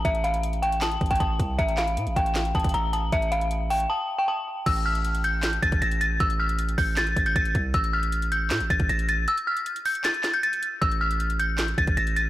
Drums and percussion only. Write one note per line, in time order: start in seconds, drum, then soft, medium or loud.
0.05 kick loud
0.05 closed hi-hat medium
0.15 closed hi-hat medium
0.24 closed hi-hat medium
0.34 closed hi-hat medium
0.43 closed hi-hat medium
0.53 closed hi-hat soft
0.63 closed hi-hat medium
0.72 closed hi-hat medium
0.81 snare loud
0.81 clap loud
0.81 closed hi-hat medium
0.92 closed hi-hat soft
1.01 kick medium
1.01 closed hi-hat soft
1.06 closed hi-hat medium
1.11 kick medium
1.11 closed hi-hat medium
1.15 closed hi-hat medium
1.20 kick medium
1.20 closed hi-hat medium
1.40 kick loud
1.40 closed hi-hat medium
1.59 kick loud
1.59 closed hi-hat medium
1.69 closed hi-hat medium
1.77 snare medium
1.77 clap medium
1.77 closed hi-hat medium
1.88 closed hi-hat medium
1.97 closed hi-hat medium
2.07 closed hi-hat soft
2.16 kick loud
2.16 closed hi-hat medium
2.26 closed hi-hat medium
2.35 snare loud
2.35 clap medium
2.35 closed hi-hat medium
2.45 closed hi-hat medium
2.55 kick medium
2.55 closed hi-hat soft
2.60 closed hi-hat medium
2.64 kick medium
2.64 closed hi-hat medium
2.69 closed hi-hat medium
2.74 closed hi-hat medium
2.93 closed hi-hat medium
3.12 kick loud
3.12 closed hi-hat medium
3.22 closed hi-hat medium
3.32 closed hi-hat medium
3.41 closed hi-hat medium
3.51 closed hi-hat medium
3.70 open hi-hat medium
3.80 closed hi-hat medium
4.66 kick loud
4.66 closed hi-hat medium
4.66 crash loud
4.76 closed hi-hat medium
4.95 closed hi-hat medium
5.05 closed hi-hat medium
5.15 closed hi-hat medium
5.24 closed hi-hat medium
5.43 snare loud
5.43 clap loud
5.43 closed hi-hat medium
5.53 closed hi-hat medium
5.63 kick medium
5.63 closed hi-hat medium
5.72 kick medium
5.72 closed hi-hat medium
5.82 closed hi-hat medium
5.92 closed hi-hat medium
6.01 closed hi-hat medium
6.20 kick loud
6.20 closed hi-hat medium
6.30 closed hi-hat medium
6.49 closed hi-hat medium
6.59 closed hi-hat medium
6.69 closed hi-hat medium
6.78 kick loud
6.78 open hi-hat medium
6.97 snare loud
6.97 clap loud
6.97 closed hi-hat medium
7.07 closed hi-hat medium
7.16 kick medium
7.16 closed hi-hat medium
7.26 closed hi-hat medium
7.36 kick loud
7.36 closed hi-hat medium
7.45 closed hi-hat medium
7.55 kick loud
7.55 closed hi-hat medium
7.74 kick loud
7.74 closed hi-hat medium
7.84 closed hi-hat medium
8.03 closed hi-hat medium
8.12 closed hi-hat medium
8.22 closed hi-hat medium
8.32 closed hi-hat medium
8.50 snare loud
8.50 clap loud
8.50 closed hi-hat medium
8.60 closed hi-hat medium
8.70 kick medium
8.70 closed hi-hat medium
8.80 kick medium
8.80 closed hi-hat medium
8.89 closed hi-hat medium
8.99 closed hi-hat medium
9.09 closed hi-hat medium
9.28 closed hi-hat medium
9.38 closed hi-hat medium
9.57 closed hi-hat medium
9.66 closed hi-hat medium
9.76 closed hi-hat medium
9.85 closed hi-hat medium
9.85 open hi-hat medium
9.95 closed hi-hat medium
10.04 snare loud
10.04 clap medium
10.04 closed hi-hat medium
10.14 closed hi-hat medium
10.23 snare medium
10.23 clap medium
10.23 closed hi-hat medium
10.34 closed hi-hat medium
10.43 closed hi-hat medium
10.53 closed hi-hat medium
10.63 closed hi-hat medium
10.82 kick loud
10.82 closed hi-hat medium
10.92 closed hi-hat medium
11.11 closed hi-hat medium
11.20 closed hi-hat medium
11.30 closed hi-hat medium
11.40 closed hi-hat medium
11.58 snare loud
11.58 clap medium
11.58 closed hi-hat medium
11.68 closed hi-hat medium
11.78 kick medium
11.78 closed hi-hat medium
11.87 kick medium
11.87 closed hi-hat medium
11.97 closed hi-hat medium
12.07 closed hi-hat medium
12.16 closed hi-hat medium